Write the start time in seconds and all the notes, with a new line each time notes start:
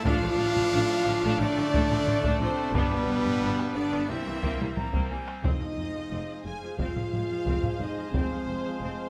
0.03 A1 A2 F3 A3 D4 F4 A4 D5 F5, taiko
0.22 A1 F3 A3
0.38 A1 D3 F3
0.55 A1 F3 A3, taiko low-mid
0.72 A1 A3 D4
1.05 A1 D3 F3
1.22 A1 A3 D4
1.39 A1 D3 F3 A3 D4 D5
1.56 A1 D3 F3, taiko rim
1.72 A1 A3 D4, taiko
1.89 A1 F3 A3, taiko rim
2.06 A1 D3 F3, taiko low-mid
2.23 A1 A3 D4, taiko
2.40 A1 C3 F3 A3 C4 C5
2.73 G1 G2 B2 G3 B3 D4 B4, taiko
2.90 G1 G3 B3, taiko rim
3.07 G1 D3 G3
3.24 G1 G3 B3, taiko low-mid
3.40 G1 B3 D4
3.59 taiko rim
3.75 G1 D3 G3 B3 D4 D5
3.91 G1 B3 D4, taiko rim
4.09 C2 E3 G3 A#3 C4 E4 C5 E5
4.26 C2 E3 G3
4.42 C2 A#3 C4, taiko
4.60 C2 G3 A#3
4.76 C2 E3 G3 A#5, taiko low-mid
4.93 C2 A#3 C4, taiko
5.10 C2 G3 A#3 G#5
5.28 taiko rim
5.43 F1 F2 F3 G#3 C4 D#4 G#4 C5 D#5 F5, taiko
5.61 F2 F3
5.78 F1 F2 G#3
5.95 F2 F3
6.11 F1 F2 C4
6.44 F1 F2 G#3 G#4 G#5
6.61 F2 F3
6.78 F1 F2 C4 F4 F5, taiko
6.95 F2 F3, taiko low-mid
7.12 F1 F2 G#3, taiko low-mid
7.30 F2 F3
7.46 F1 F2 C4, taiko
7.63 F2 F3, taiko low-mid
7.79 F1 F2 G#3 D#4 D#5, taiko low-mid
7.97 F2 F3
8.11 F1 F2 C4 C5, taiko
8.31 F2 F3
8.48 F1 F2 G#3
8.65 F2 F3
8.81 F1 F2 C4 C5